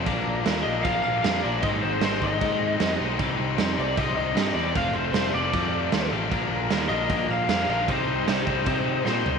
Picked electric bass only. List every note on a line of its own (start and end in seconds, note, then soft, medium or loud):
0.07 0.23 A#1 loud
0.26 0.43 A#1 loud
0.46 0.63 D#2 medium
0.65 0.82 A#1 medium
0.85 1.02 A#1 loud
1.05 1.22 A#1 medium
1.25 1.41 F2 medium
1.44 1.61 A#1 medium
1.63 1.80 G#1 loud
1.83 2.00 G#1 medium
2.03 2.19 G#1 medium
2.22 2.39 G#1 medium
2.42 2.76 G#2 loud
2.81 2.98 F2 medium
3.00 3.17 B1 medium
3.20 3.37 C2 loud
3.39 3.56 C2 loud
3.59 3.76 F2 medium
3.78 3.95 C2 medium
3.98 4.15 C2 medium
4.17 4.34 C2 medium
4.35 4.53 G2 loud
4.55 4.72 E2 medium
4.76 4.93 F1 loud
4.93 5.11 F1 loud
5.13 5.31 F1 medium
5.33 5.51 F1 medium
5.54 5.88 F2 loud
5.92 6.10 D#2 loud
6.12 6.29 A1 medium
6.32 6.49 A#1 loud
6.50 6.68 A#1 medium
6.70 6.88 D#2 medium
6.90 7.07 A#1 medium
7.10 7.27 A#1 medium
7.29 7.47 A#1 medium
7.49 7.66 F2 loud
7.68 7.85 A#1 medium
7.89 8.05 C2 loud
8.07 8.25 C2 medium
8.26 8.44 C2 medium
8.47 8.64 C2 medium
8.67 9.01 C3 medium
9.05 9.22 A#2 loud
9.26 9.39 C2 medium